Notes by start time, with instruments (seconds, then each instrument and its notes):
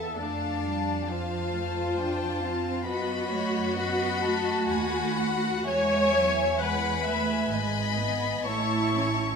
Already playing: double bass section E2, cello section B3, viola section A4, violin section E5 A5
0.18 double bass section F2, cello section A3, viola section D4, violin section D5 F5 A5
0.64 cello section G3
1.09 cello section F3, viola section F4, violin section C5 F5 A5
1.54 cello section A3
1.97 cello section D4, violin section G5 A5
2.43 cello section C4, violin section F5
2.86 double bass section F#2, cello section B3, viola section F#4, violin section B4 D#5 B5
3.32 cello section A3, violin section C#5
3.76 cello section B3, violin section D#5 F#5 B5
4.21 cello section A3, violin section A5
4.67 double bass section D#2, violin section F#5 G#5 B5
5.16 violin section F#5
5.66 double bass section E2, cello section G#3, viola section C#5, violin section E5 G#5
6.16 cello section F#3
6.60 cello section G#3, viola section B4, violin section F#5 G#5 B5
7.06 cello section A3, violin section E5
7.52 double bass section G#1, cello section G#3, violin section D#5 B5
8.00 cello section B3
8.44 double bass section A1, cello section A3, viola section E4, violin section C#5 A5 C#6
8.94 cello section C#4, violin section C#5